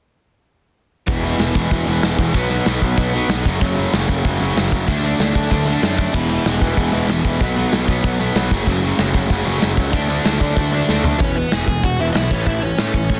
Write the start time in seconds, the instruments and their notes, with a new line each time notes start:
1.07 picked electric bass E1, distorted electric guitar E2 B2 E3, overdriven electric guitar G#3 B3 E4 G#4, kick, open hi-hat
1.23 distorted electric guitar E2 B2 E3
1.39 picked electric bass E1, distorted electric guitar E2 B2 E3, snare, open hi-hat
1.55 picked electric bass E1, distorted electric guitar E2 B2 E3, kick
1.71 picked electric bass E1, distorted electric guitar E2 B2 E3, kick, open hi-hat
1.86 picked electric bass E1, distorted electric guitar E2 B2 E3, overdriven electric guitar G#3 B3 E4 G#4
2.03 picked electric bass E1, distorted electric guitar E2 B2 E3, overdriven electric guitar G#3 B3 E4 G#4, snare, open hi-hat
2.19 picked electric bass E1, distorted electric guitar E2 B2 E3, kick
2.34 picked electric bass B1, distorted electric guitar B2 F#3 B3, overdriven electric guitar D#4, kick, open hi-hat
2.50 distorted electric guitar B2 F#3 B3
2.66 picked electric bass B1, distorted electric guitar B2 F#3 B3, snare, open hi-hat
2.81 picked electric bass B1, distorted electric guitar B2 F#3 B3, kick
2.97 picked electric bass B1, distorted electric guitar B2 F#3 B3, kick, open hi-hat
3.13 distorted electric guitar B2 F#3 B3, overdriven electric guitar D#4
3.29 picked electric bass B1, distorted electric guitar B2 F#3 B3, overdriven electric guitar D#4, snare, open hi-hat
3.46 picked electric bass F#1, distorted electric guitar F#2 C#3 F#3, overdriven electric guitar A3 C#4, kick
3.61 picked electric bass F#1, distorted electric guitar F#2 C#3 F#3, kick, open hi-hat
3.77 distorted electric guitar F#2 C#3 F#3
3.93 picked electric bass F#1, distorted electric guitar F#2 C#3 F#3, snare, open hi-hat
4.09 picked electric bass F#1, distorted electric guitar F#2 C#3 F#3, kick
4.25 picked electric bass F#1, distorted electric guitar F#2 C#3 F#3, overdriven electric guitar A3 C#4, kick, open hi-hat
4.39 picked electric bass F#1, distorted electric guitar F#2 C#3 F#3, overdriven electric guitar A3 C#4
4.56 picked electric bass F#1, distorted electric guitar F#2 C#3 F#3, snare, open hi-hat
4.72 picked electric bass F#1, distorted electric guitar F#2 C#3 F#3, kick
4.88 picked electric bass D2, distorted electric guitar D3 A3 D4, overdriven electric guitar F#3, kick, open hi-hat
5.04 distorted electric guitar D3 A3 D4
5.19 picked electric bass D2, distorted electric guitar D3 A3 D4, snare, open hi-hat
5.34 picked electric bass D2, distorted electric guitar D3 A3 D4, kick
5.50 picked electric bass D2, distorted electric guitar D3 A3 D4, kick, open hi-hat
5.66 distorted electric guitar D3 A3 D4, overdriven electric guitar F#3
5.82 picked electric bass F#2, distorted electric guitar D3 A3 D4, overdriven electric guitar F#3, snare, open hi-hat
5.98 distorted electric guitar D3 A3 D4, kick
6.13 picked electric bass E1, distorted electric guitar E2 B2 E3, overdriven electric guitar G#3 B3 E4, kick, crash
6.29 distorted electric guitar E2 B2 E3
6.45 picked electric bass E1, distorted electric guitar E2 B2 E3, snare, open hi-hat
6.61 picked electric bass E1, distorted electric guitar E2 B2 E3, kick
6.77 picked electric bass E1, distorted electric guitar E2 B2 E3, kick, open hi-hat
6.92 picked electric bass E1, distorted electric guitar E2 B2 E3, overdriven electric guitar G#3 B3 E4
7.08 picked electric bass E1, distorted electric guitar E2 B2 E3, overdriven electric guitar G#3 B3 E4, snare, open hi-hat
7.24 picked electric bass E1, distorted electric guitar E2 B2 E3, kick
7.40 picked electric bass B1, distorted electric guitar B2 F#3 B3, overdriven electric guitar D#4, kick, open hi-hat
7.56 distorted electric guitar B2 F#3 B3
7.72 picked electric bass B1, distorted electric guitar B2 F#3 B3, snare, open hi-hat
7.87 picked electric bass B1, distorted electric guitar B2 F#3 B3, kick
8.03 picked electric bass B1, distorted electric guitar B2 F#3 B3, kick, open hi-hat
8.20 distorted electric guitar B2 F#3 B3, overdriven electric guitar D#4
8.35 picked electric bass B1, distorted electric guitar B2 F#3 B3, overdriven electric guitar D#4, snare, open hi-hat
8.51 picked electric bass F#1, distorted electric guitar F#2 C#3 F#3, overdriven electric guitar A3 C#4, kick
8.67 picked electric bass F#1, distorted electric guitar F#2 C#3 F#3, kick, open hi-hat
8.83 distorted electric guitar F#2 C#3 F#3
8.98 picked electric bass F#1, distorted electric guitar F#2 C#3 F#3, snare, open hi-hat
9.14 picked electric bass F#1, distorted electric guitar F#2 C#3 F#3, kick
9.30 picked electric bass F#1, distorted electric guitar F#2 C#3 F#3, overdriven electric guitar A3 C#4, kick, open hi-hat
9.45 picked electric bass F#1, distorted electric guitar F#2 C#3 F#3, overdriven electric guitar A3 C#4
9.62 picked electric bass F#1, distorted electric guitar F#2 C#3 F#3, snare, open hi-hat
9.77 picked electric bass C#2, distorted electric guitar F#2 C#3 F#3, kick
9.93 picked electric bass D2, distorted electric guitar D3 A3 D4, overdriven electric guitar F#3, kick, open hi-hat
10.09 distorted electric guitar D3 A3 D4
10.25 picked electric bass D2, distorted electric guitar D3 A3 D4, snare, open hi-hat
10.40 picked electric bass D2, distorted electric guitar D3 A3 D4, kick
10.56 picked electric bass D2, distorted electric guitar D3 A3 D4, kick, open hi-hat
10.73 distorted electric guitar D3 A3 D4, overdriven electric guitar F#3
10.89 picked electric bass D2, distorted electric guitar D3 A3 D4, overdriven electric guitar F#3, snare
11.04 distorted electric guitar D3 A3 D4, floor tom
11.20 picked electric bass E1, distorted electric guitar E2 B2 E3, lead electric guitar C#4 C#5, kick, open hi-hat
11.36 distorted electric guitar E2 B2, lead electric guitar B3 B4
11.51 picked electric bass E1, distorted electric guitar E2 B2 E3, lead electric guitar G#4 G#5, snare, open hi-hat
11.67 picked electric bass E1, distorted electric guitar E2 B2, lead electric guitar G#4 G#5, kick
11.83 picked electric bass E1, distorted electric guitar E2 B2, lead electric guitar F#4 F#5, kick, open hi-hat
11.99 picked electric bass E1, distorted electric guitar E2 B2 E3, lead electric guitar E4 E5
12.13 picked electric bass B1, distorted electric guitar E2 B2, lead electric guitar E4 D#5 E5, snare, open hi-hat
12.31 picked electric bass A1, distorted electric guitar A2 E3 A3, lead electric guitar C#4 C#5, kick
12.46 picked electric bass A1, distorted electric guitar A2 E3 A3, lead electric guitar E4 E5, kick, open hi-hat
12.63 distorted electric guitar A2 E3, lead electric guitar C#4 C#5
12.78 distorted electric guitar A2 E3 A3, picked electric bass A2, snare, open hi-hat
12.94 picked electric bass A1, distorted electric guitar A2 E3, kick
13.09 picked electric bass A2, distorted electric guitar A2 E3, kick, open hi-hat